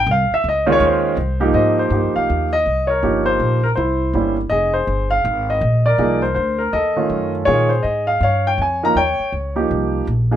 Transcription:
0.07 upright bass C2
0.11 grand piano F5
0.31 grand piano E5, muted upright bass stroke
0.44 upright bass C#2
0.49 grand piano D#5
0.66 grand piano D#3 G#3 C#4 F4
0.72 grand piano C#5
0.80 upright bass D#2
0.86 grand piano C5
1.17 upright bass C2
1.40 grand piano G#2 F3 A#3 D#4 G4
1.54 upright bass G#2, grand piano C5 D#5
1.79 grand piano C5
1.90 upright bass G2, grand piano F3 A#3 D#4 G4
2.03 upright bass D#2
2.16 upright bass C2, grand piano F5
2.29 upright bass D#2
2.53 grand piano D#5
2.66 upright bass C2
2.87 grand piano A#4 C#5
3.03 upright bass G1, grand piano F3 A#3 D#4 G4
3.26 grand piano C5
3.39 upright bass A#1
3.63 grand piano A#4
3.75 upright bass C2, grand piano E4 C5
4.13 upright bass G1, grand piano G3 A#3 C#4 E4
4.50 upright bass F1, grand piano G#4 D#5
4.74 grand piano C5
4.87 upright bass G1
5.11 grand piano F5
5.25 upright bass G#1
5.50 grand piano D#5
5.61 upright bass A#1
5.86 grand piano A#4 D5
5.98 upright bass C2, grand piano F3 A#3 D#4 G#4
6.22 grand piano C5
6.35 upright bass D2, grand piano C5
6.59 grand piano A#4
6.73 upright bass D#2, grand piano A4 D#5
6.96 grand piano D#3 A3 C#4 F4
7.10 upright bass F#2
7.45 upright bass A#2, grand piano D#3 G#3 C#4 F4 G#4 C#5
7.69 grand piano C5
7.83 upright bass G#2, grand piano D#5
8.07 grand piano F5
8.21 upright bass G2, grand piano C#5 F5
8.47 grand piano G5
8.58 upright bass F2, grand piano G#5
8.83 grand piano F3 A#3 D#4 A#4 A#5
8.95 upright bass D#2, grand piano C#5 G5
9.20 muted upright bass stroke
9.32 upright bass C#2
9.56 grand piano F3 A#3 D#4 G4
9.71 upright bass C2
10.07 upright bass A#1
10.31 grand piano F3 A#3 D#4 G#4

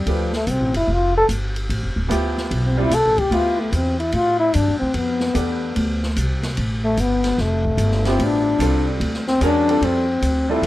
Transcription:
Already playing: trombone G3
0.06 upright bass D2, trombone F3, upright piano A3 D4 G4 B4, ride
0.33 trombone A3, snare
0.47 upright bass C2, trombone C4, hi-hat pedal, ride
0.60 upright bass A1
0.74 upright bass F1, trombone E4, ride
0.88 upright bass F1
0.93 trombone F4
1.17 trombone A4
1.29 upright bass G1, hi-hat pedal, ride
1.56 ride
1.69 upright bass A1, ride
1.83 upright bass F1
1.96 upright bass D1
2.08 upright bass D2, upright piano F3 B3 E4 G4, hi-hat pedal, ride
2.37 snare
2.51 upright bass B1, ride
2.67 trombone C4
2.77 upright piano G3 C4 F4 G4
2.82 trombone E4
2.90 upright bass C2, hi-hat pedal, ride
2.94 trombone A4
3.05 upright bass A1
3.18 upright bass F1, trombone G4, kick, ride
3.31 upright bass D2, upright piano B3 E4 F4 G4, trombone F4, ride
3.60 trombone A3
3.72 upright bass E2, trombone C4, hi-hat pedal, ride
4.00 trombone E4, ride
4.12 upright bass A2, trombone F4, ride
4.39 trombone E4
4.54 upright bass G2, trombone D4, hi-hat pedal, ride
4.68 upright bass F2
4.79 upright bass D2, trombone C4
4.94 upright bass F2, trombone B3, ride
5.20 snare
5.34 upright bass E2, upright piano A3 D4 G4 B4, hi-hat pedal, ride
5.76 upright bass D2, ride
6.03 snare
6.16 upright bass C2, hi-hat pedal, ride
6.43 snare, ride
6.57 upright bass A1, ride
6.84 trombone A3
6.97 upright bass G1, trombone B3, hi-hat pedal, ride
7.24 snare, ride
7.38 upright bass F1, trombone A3, snare
7.65 kick
7.77 upright bass G1, hi-hat pedal, ride
7.92 snare
8.05 upright piano F3 B3 E4 G4, trombone C4, snare, ride
8.19 upright bass A1, ride
8.24 trombone D4
8.59 upright bass C2, upright piano G3 C4 F4 A4, hi-hat pedal, ride
9.00 upright bass D2, ride
9.14 snare
9.27 trombone C4, snare
9.41 upright bass E2, upright piano G#3 C#4 F#4 A#4, trombone D4, hi-hat pedal, ride
9.68 upright piano G3 C4 F4 A4, ride
9.81 upright bass F2, trombone C4, ride
10.22 upright bass D2, hi-hat pedal, ride
10.49 upright piano G3 C4 F4 A4, trombone E4
10.62 upright bass E2, ride

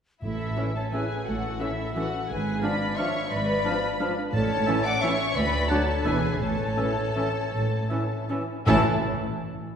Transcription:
0.22 double bass section A1, timpani A2, cello section A2, violin section E4 E5, flute A4
0.57 viola section E3 C#4, french horn section E3 C#4, clarinet C#4, oboe E5
0.75 violin section A4 A5, flute C#5
0.92 french horn section E3 C#4, viola section E3 C#4, clarinet C#4, violin section G#4 G#5, flute B4, oboe E5
1.25 double bass section A1, cello section A2, violin section F#4 F#5, flute A4
1.59 french horn section E3 C#4, viola section E3 C#4, clarinet C#4, violin section E4 E5, flute A4, oboe E5
1.95 viola section E3 C#4, french horn section E3 C#4, clarinet C#4, violin section F#4 F#5, flute A4, oboe E5
2.29 double bass section G#1, cello section G#2, violin section G#4 G#5, flute B4
2.62 viola section F3 D4, french horn section F3 D4, clarinet D4, violin section B4 B5, flute D5, oboe F5
2.96 viola section F3 D4, french horn section F3 D4, clarinet D4, violin section C#5 C#6, flute E5, oboe F5
3.29 double bass section G#1, cello section G#2, violin section B4 B5, flute D5
3.64 viola section F3 D4, french horn section F3 D4, clarinet D4, oboe F5
4.00 viola section F3 D4, french horn section F3 D4, clarinet D4, oboe F5
4.33 double bass section A1, timpani A2, cello section A2, violin section A4 A5, flute C#5
4.67 viola section E3 C#4, french horn section E3 C#4, clarinet C#4, oboe E5
4.84 violin section D5 D6, flute F#5
5.01 french horn section E3 C#4, viola section E3 C#4, clarinet C#4, violin section C#5 C#6, flute E5, oboe E5
5.35 double bass section D2, cello section D2, violin section B4 B5, flute D5
5.69 viola section F#3 D4, french horn section F#3 D4, clarinet D4, violin section A4 A5, flute C#5, oboe F#5
6.05 double bass section E1, cello section E2, viola section E3 D4, french horn section E3 D4, clarinet D4, violin section G#4 G#5, flute B4, oboe E5
6.40 double bass section A1, cello section A2, violin section A4 A5, flute C#5
6.77 viola section E3 C#4, french horn section E3 C#4, clarinet C#4, oboe E5
7.16 viola section E3 C#4, french horn section E3 C#4, clarinet C#4, oboe E5
7.53 double bass section A1, cello section A2
7.89 viola section E3 C#4, french horn section E3 C#4, clarinet C#4, oboe E5
8.30 viola section E3 C#4, french horn section E3 C#4, clarinet C#4, oboe E5
8.66 double bass section A1, timpani A2, cello section A2, viola section E3 E4, french horn section E3 C#4, clarinet C#4, violin section A4 A5, oboe E5, flute A5

